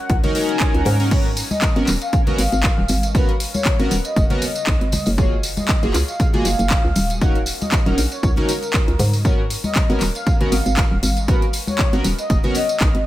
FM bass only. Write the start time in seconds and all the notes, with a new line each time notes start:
0.10 C#2
0.74 C#2
0.86 G#2
1.76 G#1
1.88 D#1
2.38 G#1
2.52 G#1
2.78 D#1
2.89 G#1
3.80 G#1
3.91 D#1
4.16 F#1
4.67 B1
4.81 G#1
5.07 F#1
5.83 F#1
5.94 C#2
6.45 F#1
6.59 F#1
6.85 C#2
6.96 D#1
7.86 D#1
7.98 A#1
8.23 C#2
8.88 C#2
8.99 G#2
9.90 G#1
10.01 D#1
10.52 G#1
10.66 G#1
10.91 D#1
11.03 G#1
11.93 G#1
12.04 D#1
12.30 F#1
12.81 B1
12.95 G#1